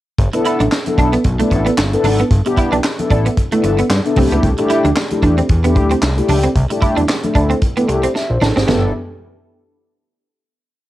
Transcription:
0.18 analog synth bass G1, kick, closed hi-hat, muted conga, low conga
0.33 analog polysynth B3 D4 E4 A4, muted clean electric guitar stroke, closed hi-hat
0.45 clean electric guitar E4, closed hi-hat
0.60 analog synth bass A1, clean electric guitar D4, closed hi-hat, high conga
0.72 muted clean electric guitar stroke, snare, clap
0.86 analog polysynth B3 D4 E4 A4, closed hi-hat, high conga
0.98 analog synth bass B1, clean electric guitar D4, kick, closed hi-hat, muted conga
1.13 clean electric guitar B3, closed hi-hat
1.24 analog synth bass B1, kick, closed hi-hat
1.39 clean electric guitar A3, analog polysynth B3 D4 E4 A4, closed hi-hat
1.51 analog synth bass A1, muted clean electric guitar stroke, kick, closed hi-hat, muted conga, high conga
1.66 clean electric guitar B3, closed hi-hat
1.78 analog synth bass G1, muted clean electric guitar stroke, snare, clap, muted conga
1.92 analog polysynth B3 D4 E4 A4, closed hi-hat
2.04 analog synth bass G#1, clean electric guitar D4, open hi-hat, muted conga, high conga, low conga
2.19 clean electric guitar B3, closed hi-hat
2.31 analog synth bass G1, kick, closed hi-hat, muted conga, low conga
2.45 analog polysynth B3 D4 E4 G4, muted clean electric guitar stroke, closed hi-hat
2.57 clean electric guitar E4, kick, closed hi-hat, muted conga
2.72 analog synth bass B1, clean electric guitar D4, closed hi-hat, high conga
2.84 muted clean electric guitar stroke, snare, clap
2.98 analog polysynth B3 D4 E4 A4, closed hi-hat, high conga
3.10 analog synth bass A1, clean electric guitar D4, kick, closed hi-hat, muted conga
3.26 clean electric guitar B3, closed hi-hat
3.37 kick, closed hi-hat, muted conga
3.51 clean electric guitar A3, analog polysynth B3 D4 E4 A4, closed hi-hat
3.63 analog synth bass G1, muted clean electric guitar stroke, closed hi-hat, high conga
3.78 clean electric guitar B3, closed hi-hat
3.90 analog synth bass G2, muted clean electric guitar stroke, snare, clap, muted conga
4.05 analog polysynth B3 D4 E4 A4, closed hi-hat
4.16 analog synth bass C2, analog polysynth A3 D4 E4 G4, clean electric guitar C4, kick, open hi-hat, muted conga, high conga, low conga
4.31 analog synth bass C#2, clean electric guitar B3, closed hi-hat
4.43 analog synth bass C2, kick, closed hi-hat, muted conga, low conga
4.57 analog polysynth A3 D4 E4 G4, muted clean electric guitar stroke, closed hi-hat
4.70 clean electric guitar E4, closed hi-hat, muted conga
4.84 analog synth bass D2, clean electric guitar D4, closed hi-hat, high conga
4.96 muted clean electric guitar stroke, snare, clap
5.11 analog polysynth A3 D4 E4 G4, closed hi-hat, high conga
5.23 analog synth bass E2, clean electric guitar D4, kick, closed hi-hat
5.38 clean electric guitar C4, closed hi-hat
5.49 analog synth bass E2, kick, closed hi-hat, muted conga
5.64 analog polysynth A3 D4 E4 G4, clean electric guitar B3, closed hi-hat
5.76 analog synth bass D2, muted clean electric guitar stroke, kick, closed hi-hat, muted conga, high conga
5.91 clean electric guitar C4, closed hi-hat
6.02 analog synth bass C2, muted clean electric guitar stroke, snare, clap
6.17 analog polysynth A3 D4 E4 G4, closed hi-hat
6.29 analog synth bass C#2, clean electric guitar D4, open hi-hat, muted conga, high conga, low conga
6.44 clean electric guitar C4, closed hi-hat
6.55 analog synth bass C2, kick, closed hi-hat, low conga
6.70 analog polysynth A3 D4 E4 G4, muted clean electric guitar stroke, closed hi-hat
6.82 clean electric guitar E4, kick, closed hi-hat, muted conga
6.97 analog synth bass E2, clean electric guitar D4, closed hi-hat, high conga
7.09 muted clean electric guitar stroke, snare, clap, muted conga
7.23 analog polysynth A3 D4 E4 A4, closed hi-hat, high conga
7.35 analog synth bass D2, clean electric guitar D4, kick, closed hi-hat
7.50 clean electric guitar C4, closed hi-hat
7.62 kick, closed hi-hat, muted conga
7.76 analog polysynth A3 D4 E4 G4, clean electric guitar B3, closed hi-hat
7.88 analog synth bass C2, muted clean electric guitar stroke, closed hi-hat
8.03 clean electric guitar C4, closed hi-hat
8.15 analog polysynth E5, muted clean electric guitar stroke, snare
8.30 analog synth bass A#1, analog polysynth C5
8.41 analog synth bass A1, clean electric guitar D4, analog polysynth A4, snare, muted conga, high conga, low conga
8.56 analog synth bass G#1, clean electric guitar C4, analog polysynth G4, snare
8.68 analog synth bass G1, clean electric guitar B3, analog polysynth B3 D4 E4 A4, snare, floor tom, crash, high conga

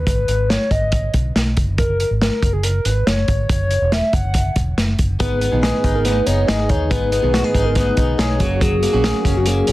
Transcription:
0.06 fingered electric bass G#1, soft synth lead B4, kick, closed hi-hat
0.28 fingered electric bass G#1, closed hi-hat
0.49 soft synth lead C#5, snare, closed hi-hat
0.71 fingered electric bass G#1, soft synth lead D#5, kick, closed hi-hat
0.92 kick, closed hi-hat
1.14 fingered electric bass B1, kick, closed hi-hat
1.35 fingered electric bass B1, snare, closed hi-hat
1.57 fingered electric bass F#1, kick, closed hi-hat
1.78 soft synth lead A#4, kick, closed hi-hat
2.00 soft synth lead A#4, closed hi-hat
2.11 fingered electric bass G#1
2.21 soft synth lead A#4, snare, closed hi-hat
2.43 fingered electric bass F#1, kick, closed hi-hat
2.53 soft synth lead G#4
2.63 soft synth lead A#4, closed hi-hat
2.85 fingered electric bass G#1, soft synth lead B4, closed hi-hat
3.06 soft synth lead C#5, snare, closed hi-hat
3.28 fingered electric bass G#1, kick, closed hi-hat
3.49 fingered electric bass F#1, soft synth lead C#5, kick, closed hi-hat
3.71 closed hi-hat
3.81 fingered electric bass E1
3.92 soft synth lead E5, snare, closed hi-hat
4.13 fingered electric bass F#1, soft synth lead F#5, kick, closed hi-hat
4.34 kick, closed hi-hat
4.56 fingered electric bass E1, kick, closed hi-hat
4.77 fingered electric bass F#1, snare, closed hi-hat
4.99 fingered electric bass F#1, kick, closed hi-hat
5.19 steel-string acoustic guitar G#3 B3 D#4 G#4, clean electric guitar B3, soft synth lead B4, kick, closed hi-hat
5.41 clean electric guitar B3, closed hi-hat
5.52 fingered electric bass A#1, steel-string acoustic guitar G#2 D#3 G#3 B3 D#4 G#4
5.63 clean electric guitar G#4, soft synth lead B4, snare, closed hi-hat
5.84 fingered electric bass G#1, clean electric guitar D#4, kick, closed hi-hat
5.94 steel-string acoustic guitar G#3 B3 D#4 G#4, soft synth lead A#4
6.05 clean electric guitar B3, soft synth lead B4, snare, closed hi-hat
6.26 fingered electric bass F#1, steel-string acoustic guitar G#3 B3 D#4 G#4, clean electric guitar D#4, soft synth lead C#5, closed hi-hat
6.47 fingered electric bass G#1, steel-string acoustic guitar G#3 B3 D#4 G#4, clean electric guitar G#4, soft synth lead D#5, snare, closed hi-hat
6.69 fingered electric bass D#2, clean electric guitar D#4, soft synth lead C#5, kick, closed hi-hat
6.90 fingered electric bass G#1, steel-string acoustic guitar G#3 B3 D#4 G#4, clean electric guitar B3, soft synth lead B4, kick, closed hi-hat
7.12 clean electric guitar B3, soft synth lead B4, closed hi-hat
7.22 fingered electric bass B1, steel-string acoustic guitar G#2 D#3 G#3 B3 D#4 G#4
7.34 clean electric guitar F#4, snare, closed hi-hat
7.44 clean electric guitar G#4
7.55 fingered electric bass G#1, clean electric guitar D#4, kick, closed hi-hat
7.65 steel-string acoustic guitar G#3 B3 D#4 G#4, soft synth lead A#4
7.75 clean electric guitar B3, soft synth lead B4, kick, snare, closed hi-hat
7.97 fingered electric bass B1, steel-string acoustic guitar G#3 B3 D#4 G#4, clean electric guitar D#4, kick, closed hi-hat
8.18 fingered electric bass B1, steel-string acoustic guitar G#3 B3 D#4 G#4, clean electric guitar G#4, soft synth lead C#5, snare, closed hi-hat
8.40 fingered electric bass F#1, steel-string acoustic guitar F#3 A#3 C#4 F#4 G#4, clean electric guitar F#3, kick, closed hi-hat
8.61 clean electric guitar F#3, soft synth lead G#4, kick, closed hi-hat
8.83 clean electric guitar A#3, closed hi-hat
8.93 fingered electric bass A#1, steel-string acoustic guitar F#3 A#3 C#4 F#4 G#4
9.04 clean electric guitar G#4, snare, closed hi-hat
9.25 fingered electric bass F#1, clean electric guitar C#4, kick, closed hi-hat
9.35 steel-string acoustic guitar C#4 F#4 G#4, soft synth lead F#4
9.46 clean electric guitar A#3, soft synth lead G#4, closed hi-hat
9.67 fingered electric bass G#1, steel-string acoustic guitar A#3 C#4 F#4, clean electric guitar C#4, closed hi-hat

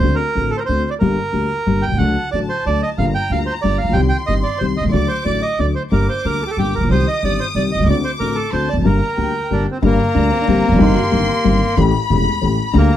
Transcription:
Already playing: bandoneon C5
0.03 upright bass D2, grand piano D2 D3 A3 C4 F#4
0.15 bandoneon A#4
0.35 grand piano A1 A2 D3 A3 C4 F#4, upright bass A1
0.50 bandoneon A4
0.57 bandoneon A#4 C5
0.66 upright bass D2, grand piano D2 D3 A3 C4 F#4, bandoneon C5
0.90 bandoneon D5
0.99 grand piano G1 G2 D3 G3 A#3 G4, upright bass G1, bandoneon A#4
1.33 grand piano D2 D3 G3 A#3 G4, upright bass D2
1.66 grand piano G1 G2 D3 G3 A#3 G4, upright bass G1
1.82 bandoneon G5
1.87 grand piano B1, upright bass B1
1.91 grand piano C2, upright bass C2
1.96 grand piano C#2 D3 F#3 A3, upright bass C#2, bandoneon F#5
2.00 grand piano D2 F#4, upright bass D2, violin section A5
2.32 upright bass A1, grand piano A1 A2 D3 F#3 A3 F#4, bandoneon D5
2.49 bandoneon C5
2.66 upright bass D2, grand piano D2 D3 F#3 A3 F#4, bandoneon D5
2.82 bandoneon D#5
2.98 upright bass G1, grand piano G1 G2 D3 G3 A#3 F4, bandoneon F5, violin section A#5
3.15 bandoneon G5
3.30 upright bass D2, grand piano D2 D3 G3 A#3 F4, bandoneon F5
3.46 bandoneon C5
3.62 upright bass G1, grand piano G1 G2 D3 G3 A#3 F4, bandoneon D5
3.78 bandoneon F5
3.84 upright bass A1, grand piano A1
3.88 upright bass A#1 B1, grand piano A#1 B1
3.93 grand piano C2 C3 D#3 G3 C4 G4, upright bass C2, bandoneon G5, violin section C6
4.09 bandoneon G5
4.26 upright bass G1, grand piano G1 G2 D#3 G3 C4 G4, bandoneon D#5
4.43 bandoneon D5
4.58 upright bass C2, grand piano C2 C3 D#3 G3 C4 G4, bandoneon C5
4.77 upright bass B1, bandoneon D#5
4.81 grand piano B1 C2, upright bass C2
4.89 upright bass C#2, grand piano C#2, bandoneon D5, violin section D6
4.93 upright bass D2, grand piano D2 D3 F#3 A3 F#4
5.08 bandoneon C5
5.25 grand piano A1 A2 D3 F#3 A3 F#4, upright bass A1, bandoneon D5
5.42 bandoneon D#5
5.59 upright bass D2, grand piano D2 D3 F#3 A3 F#4, bandoneon D5
5.75 bandoneon C5
5.91 grand piano G1 G2 D3 G3 A#3 G4, upright bass G1, bandoneon A#4, violin section D6
6.09 bandoneon C5
6.25 upright bass D2, grand piano D2 D3 G3 A#3 G4, bandoneon A#4
6.47 bandoneon G4 A4
6.57 upright bass G1, grand piano G1 G2 D3 G3 A#3 G4, bandoneon G4
6.75 upright bass A1, bandoneon A#4
6.80 grand piano A1 A#1, upright bass A#1
6.85 upright bass B1, grand piano B1
6.90 upright bass C2, grand piano C2 C3 D#3 G3 C4 G4, bandoneon C5, violin section D#6
7.08 bandoneon D#5
7.23 upright bass G1, grand piano G1 G2 D#3 G3 C4 G4, bandoneon D5
7.40 bandoneon C5
7.55 upright bass C2, grand piano C2 C3 D#3 G3 C4 G4, bandoneon D5
7.72 upright bass B1, bandoneon D#5
7.77 grand piano B1 C2, upright bass C2
7.83 upright bass C#2 D2, grand piano C#2
7.88 grand piano D2 D3 A3 C4 F#4, bandoneon D5, violin section D6
8.04 bandoneon C5
8.20 upright bass A1, grand piano A1 A2 D3 A3 C4 F#4, bandoneon A#4
8.35 bandoneon A4
8.52 grand piano D2 D3 A3 C4 F#4, upright bass D2, bandoneon C5, violin section A5
8.69 bandoneon D5
8.73 upright bass E1, grand piano E2
8.77 upright bass F1, grand piano F2
8.81 upright bass F#1, grand piano F#2 D3 G3 G4
8.85 grand piano G1 G2 A#3, upright bass G1, bandoneon A#4, violin section A#5
9.17 upright bass D2, grand piano D2 D3 G3 A#3 G4, violin section G5
9.50 grand piano G1 G2 D3 G3 A#3 G4, upright bass G1, bandoneon D4
9.71 bandoneon C4
9.82 grand piano G1 G2 D3 G3 A#3 G4, upright bass G1, bandoneon A#3, violin section A#5
10.15 grand piano D2 D3 G3 A#3 G4, upright bass D2, hollow-body jazz guitar D4
10.33 hollow-body jazz guitar C4
10.41 hollow-body jazz guitar D4
10.48 grand piano G1 G2 D3 G3 A#3 G4, upright bass G1, hollow-body jazz guitar C4
10.68 upright bass E1, grand piano E2 F2
10.72 upright bass F1, grand piano F#2, hollow-body jazz guitar D4
10.76 upright bass F#1, grand piano G1 G2 D#3 G3 C4 G4, hollow-body jazz guitar D#4
10.81 upright bass G1, violin section C6
10.95 hollow-body jazz guitar F#4
11.03 hollow-body jazz guitar G4
11.11 grand piano G1 G2 D#3 G3 C4 G4, upright bass G1
11.44 grand piano G1 G2 D#3 G3 C4 G4, upright bass G1
11.77 upright bass A1, grand piano A1 A2 E3 A3 C#4 G4, violin section B5
12.10 upright bass E1, grand piano E1 E2 E3 A3 C#4 G4
12.41 grand piano A1 A2 E3 A3 C#4 G4, upright bass A1
12.73 grand piano D2 D3 G3 A#3 G4, upright bass D2, bandoneon A#3, violin section A#5

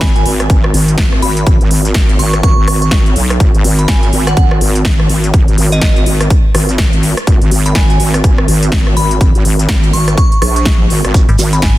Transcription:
0.01 wobble bass G#1, synth bell G#5, kick, snare, closed hi-hat
0.16 synth bell G#5, closed hi-hat
0.26 wobble bass G#1, open hi-hat
0.40 cross-stick, closed hi-hat
0.50 wobble bass G#1, kick, closed hi-hat
0.64 cross-stick
0.74 wobble bass G#1, open hi-hat
0.88 closed hi-hat
0.98 kick, snare, closed hi-hat
1.13 cross-stick
1.22 wobble bass G#1, synth bell B5, open hi-hat
1.37 closed hi-hat
1.47 wobble bass G#1, kick, closed hi-hat
1.61 wobble bass G#1, closed hi-hat
1.71 wobble bass G#1, open hi-hat
1.85 closed hi-hat
1.94 wobble bass G#1, kick, snare, closed hi-hat
2.09 closed hi-hat
2.19 wobble bass G#1, synth bell C#6, open hi-hat
2.33 cross-stick, closed hi-hat
2.43 wobble bass G#1, synth bell C#6, kick, closed hi-hat
2.58 wobble bass G#1
2.67 synth bell C#6, cross-stick, open hi-hat
2.82 synth bell C#6, closed hi-hat
2.91 wobble bass G#1, kick, snare, closed hi-hat
3.06 closed hi-hat
3.16 wobble bass B1, open hi-hat
3.30 cross-stick, closed hi-hat
3.40 wobble bass G#1, kick, closed hi-hat
3.54 wobble bass G#1, closed hi-hat
3.64 wobble bass G#1, open hi-hat
3.79 synth bell B5, closed hi-hat
3.88 wobble bass G#1, synth bell G#5, kick, snare, closed hi-hat
4.03 synth bell G#5, closed hi-hat
4.13 wobble bass G#1, open hi-hat
4.27 synth bell F#5, cross-stick, closed hi-hat
4.37 wobble bass G#1, kick, closed hi-hat
4.51 cross-stick
4.61 wobble bass G#1, open hi-hat
4.75 closed hi-hat
4.85 kick, snare, closed hi-hat
5.00 cross-stick
5.09 wobble bass G#1, open hi-hat
5.24 closed hi-hat
5.34 wobble bass G#1, kick, closed hi-hat
5.48 wobble bass G#1, closed hi-hat
5.58 wobble bass G#1, open hi-hat
5.72 synth bell D#5, closed hi-hat
5.81 wobble bass G#1, kick, snare, closed hi-hat
5.96 closed hi-hat
6.06 wobble bass G#1, open hi-hat
6.21 cross-stick, closed hi-hat
6.30 kick, closed hi-hat
6.55 wobble bass G#1, cross-stick, open hi-hat
6.69 closed hi-hat
6.78 kick, snare, closed hi-hat
6.93 wobble bass G#1, closed hi-hat
7.03 open hi-hat
7.17 cross-stick, closed hi-hat
7.27 wobble bass G#1, kick, closed hi-hat
7.42 wobble bass G#1, closed hi-hat
7.51 wobble bass G#1, open hi-hat
7.66 synth bell B5, closed hi-hat
7.75 wobble bass G#1, synth bell G#5, kick, snare, closed hi-hat
7.90 synth bell G#5, closed hi-hat
8.00 wobble bass G#1, open hi-hat
8.14 cross-stick, closed hi-hat
8.24 wobble bass G#1, kick, closed hi-hat
8.38 cross-stick
8.48 wobble bass G#1, open hi-hat
8.63 closed hi-hat
8.72 kick, snare, closed hi-hat
8.87 cross-stick
8.97 wobble bass G#1, synth bell B5, open hi-hat
9.11 closed hi-hat
9.21 wobble bass G#1, kick, closed hi-hat
9.35 wobble bass G#1, closed hi-hat
9.45 wobble bass G#1, open hi-hat
9.59 closed hi-hat
9.69 wobble bass G#1, kick, snare, closed hi-hat
9.84 closed hi-hat
9.93 wobble bass G#1, synth bell C#6, open hi-hat
10.08 cross-stick, closed hi-hat
10.18 synth bell C#6, kick, closed hi-hat
10.32 closed hi-hat
10.42 wobble bass A#1, synth bell C#6, cross-stick, open hi-hat
10.56 synth bell C#6, closed hi-hat
10.65 kick, snare, closed hi-hat
10.90 wobble bass G#1, open hi-hat
11.04 wobble bass G#1, cross-stick, closed hi-hat
11.14 wobble bass G#1, kick, closed hi-hat, shekere
11.29 fm bass G#1, closed hi-hat
11.39 wobble bass G#1, open hi-hat, shekere
11.53 synth bell B5, closed hi-hat, shekere
11.62 fm bass G#1, synth bell G#5, kick, snare, closed hi-hat, shekere

